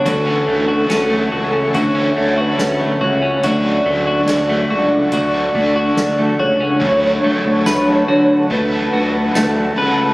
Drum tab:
CC |--------|--------|x-------|
RD |--------|--------|----x---|
HH |x-x-x-x-|x-x-x-x-|--------|
TB |--------|--------|--x---x-|
SD |--o---o-|--o---o-|--o---o-|
BD |o---o---|o---oo-o|o---o---|